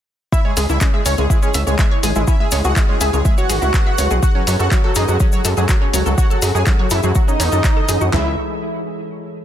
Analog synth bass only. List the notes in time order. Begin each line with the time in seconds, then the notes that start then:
0.57 C#2
0.69 C#2
1.06 C#2
1.18 C#2
1.54 C#2
1.67 C#2
2.03 G#1
2.16 G#1
2.52 C#2
2.64 C#2
3.01 C#2
3.13 C#2
3.50 G#1
3.62 C#2
3.98 C#2
4.11 B1
4.47 F#2
4.60 F#2
4.96 F#2
5.08 F#2
5.45 F#2
5.57 F#2
5.93 C#2
6.06 C#2
6.42 F#2
6.55 F#2
6.91 F#2
7.03 F#2
7.40 E2
7.52 F#2
7.89 F#2
8.01 F#2
8.13 C#2